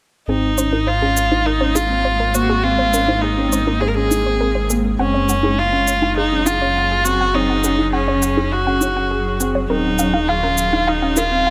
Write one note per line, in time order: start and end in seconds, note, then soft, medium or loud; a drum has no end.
0.28 4.96 G#1 medium
0.28 4.95 G#3 medium
0.28 4.95 A#3 medium
0.28 0.48 C4 medium
0.28 4.95 C4 medium
0.28 0.89 D#4 medium
0.28 0.35 G#4 medium
0.58 0.67 C#4 medium
0.58 0.64 C5 medium
0.58 shaker soft
0.72 0.92 D#4 medium
0.72 0.79 A#4 medium
0.87 1.47 F4 medium
0.87 0.96 C5 medium
1.02 1.21 C#4 medium
1.02 1.08 G#4 medium
1.17 shaker medium
1.31 1.51 D#4 medium
1.31 1.38 C5 medium
1.46 1.77 D#4 medium
1.46 1.52 A#4 medium
1.61 1.70 C#4 medium
1.61 1.70 C5 medium
1.75 1.85 D#4 medium
1.75 2.36 F4 medium
1.75 1.82 G#4 medium
1.75 shaker soft
1.90 2.09 C4 medium
2.05 2.11 C5 medium
2.20 2.26 A#4 medium
2.34 2.53 A#3 medium
2.34 2.65 F#4 medium
2.34 2.44 C5 medium
2.34 shaker soft
2.49 2.56 G#4 medium
2.63 2.83 C4 medium
2.63 3.23 F4 medium
2.79 2.85 C5 medium
2.93 3.03 C#4 medium
2.93 3.00 A#4 medium
2.93 shaker soft
3.08 3.27 D#4 medium
3.08 3.18 C5 medium
3.22 3.81 D#4 medium
3.22 3.29 G#4 medium
3.37 3.56 C#4 medium
3.53 3.59 C5 medium
3.53 shaker soft
3.67 3.86 D#4 medium
3.67 3.73 A#4 medium
3.80 3.90 G#4 medium
3.80 3.91 C5 medium
3.88 3.96 A#4 medium
3.94 4.06 C#4 medium
3.94 4.69 G#4 medium
3.94 4.03 G#4 medium
4.11 4.20 D#4 medium
4.11 shaker soft
4.26 4.45 C4 medium
4.26 4.32 C5 medium
4.41 4.47 A#4 medium
4.55 4.64 C5 medium
4.70 4.89 A#3 medium
4.70 4.76 G#4 medium
4.70 shaker medium
4.99 9.67 F#1 medium
4.99 11.50 F#3 medium
4.99 5.18 C4 medium
4.99 5.60 C#4 medium
4.99 9.66 C#4 medium
4.99 9.66 G#4 medium
4.99 5.06 F#5 medium
5.14 5.20 C#5 medium
5.29 5.38 C#4 medium
5.29 5.38 F#5 medium
5.29 shaker soft
5.43 5.62 D#4 medium
5.43 5.50 G#4 medium
5.58 6.16 F4 medium
5.72 5.92 C#4 medium
5.72 5.79 F#5 medium
5.88 5.94 C#5 medium
5.88 shaker medium
6.02 6.21 D#4 medium
6.02 6.12 F#5 medium
6.17 6.47 D#4 medium
6.17 6.23 G#4 medium
6.32 6.41 C#4 medium
6.45 6.56 D#4 medium
6.45 7.06 F4 medium
6.45 6.53 F#5 medium
6.45 shaker soft
6.61 6.80 C#4 medium
6.61 6.67 C#5 medium
6.76 6.85 F#5 medium
6.91 6.97 G#4 medium
7.04 7.24 C4 medium
7.04 7.36 F#4 medium
7.04 shaker soft
7.21 7.26 F#5 medium
7.34 7.54 C4 medium
7.34 7.92 D#4 medium
7.34 7.41 C#5 medium
7.50 7.59 F#5 medium
7.64 7.73 C#4 medium
7.64 7.70 G#4 medium
7.64 shaker soft
7.79 7.98 D#4 medium
7.93 8.54 C#4 medium
7.93 7.99 F#5 medium
8.08 8.27 C#4 medium
8.08 8.14 C#5 medium
8.23 8.32 F#5 medium
8.23 shaker medium
8.37 8.56 D#4 medium
8.37 8.44 G#4 medium
8.52 9.40 F#4 medium
8.66 8.76 C#4 medium
8.66 8.73 F#5 medium
8.81 8.91 D#4 medium
8.81 8.88 C#5 medium
8.81 shaker medium
8.96 9.15 C#4 medium
8.96 9.06 F#5 medium
9.11 9.17 G#4 medium
9.40 9.59 C4 medium
9.40 9.47 F#5 medium
9.40 shaker soft
9.55 9.61 C#5 medium
9.69 11.50 D#1 medium
9.69 9.89 C4 medium
9.69 11.50 D#4 medium
9.69 10.30 D#4 medium
9.69 9.76 A#4 medium
9.69 11.50 F5 medium
9.99 10.09 C#4 medium
9.99 10.05 F5 medium
9.99 shaker soft
10.14 10.33 D#4 medium
10.14 10.23 F5 medium
10.28 10.89 F4 medium
10.28 10.38 F5 medium
10.43 10.62 C#4 medium
10.43 10.49 A#4 medium
10.58 shaker medium
10.73 10.92 D#4 medium
10.73 10.79 F5 medium
10.87 11.19 D#4 medium
10.87 10.97 F5 medium
11.02 11.12 C#4 medium
11.02 11.12 F5 medium
11.16 11.26 D#4 medium
11.16 11.50 F4 medium
11.16 11.23 A#4 medium
11.16 shaker soft
11.31 11.50 C4 medium
11.47 11.50 F5 medium